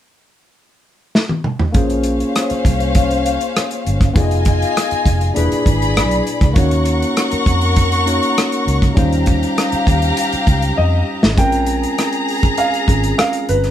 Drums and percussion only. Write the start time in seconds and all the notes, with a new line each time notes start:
1.15 snare
1.29 high tom
1.44 mid tom
1.59 floor tom
1.74 kick, closed hi-hat
1.90 closed hi-hat
2.03 closed hi-hat
2.20 closed hi-hat
2.36 cross-stick, closed hi-hat
2.50 closed hi-hat
2.65 kick, closed hi-hat
2.80 closed hi-hat
2.95 kick, closed hi-hat
3.11 closed hi-hat
3.26 closed hi-hat
3.41 closed hi-hat
3.56 cross-stick, closed hi-hat
3.71 closed hi-hat
3.87 closed hi-hat
4.01 kick, cross-stick, closed hi-hat
4.16 kick, closed hi-hat
4.31 closed hi-hat
4.45 kick, closed hi-hat
4.62 closed hi-hat
4.77 cross-stick, closed hi-hat
4.91 closed hi-hat
5.06 kick, closed hi-hat
5.21 closed hi-hat
5.36 closed hi-hat
5.52 closed hi-hat
5.66 kick, closed hi-hat
5.82 closed hi-hat
5.97 cross-stick, closed hi-hat
6.11 closed hi-hat
6.27 closed hi-hat
6.41 kick, cross-stick, closed hi-hat
6.56 kick, closed hi-hat
6.71 closed hi-hat
6.85 closed hi-hat
7.02 closed hi-hat
7.17 cross-stick, closed hi-hat
7.31 closed hi-hat
7.46 kick, closed hi-hat
7.61 closed hi-hat
7.76 kick, closed hi-hat
7.92 closed hi-hat
8.07 closed hi-hat
8.23 closed hi-hat
8.38 cross-stick, closed hi-hat
8.52 closed hi-hat
8.68 closed hi-hat
8.82 kick, cross-stick, closed hi-hat
8.97 kick, closed hi-hat
9.13 closed hi-hat
9.26 kick, closed hi-hat
9.43 closed hi-hat
9.58 cross-stick, closed hi-hat
9.72 closed hi-hat
9.87 kick, closed hi-hat
10.02 closed hi-hat
10.17 closed hi-hat
10.32 closed hi-hat
10.47 kick, closed hi-hat
10.62 closed hi-hat
11.23 snare
11.38 kick, closed hi-hat
11.52 closed hi-hat
11.66 closed hi-hat
11.83 closed hi-hat
11.98 cross-stick, closed hi-hat
12.13 closed hi-hat
12.28 open hi-hat
12.43 kick, closed hi-hat
12.58 closed hi-hat
12.74 closed hi-hat
12.88 kick, closed hi-hat
13.04 closed hi-hat
13.19 cross-stick, closed hi-hat
13.33 closed hi-hat
13.49 closed hi-hat
13.64 cross-stick, closed hi-hat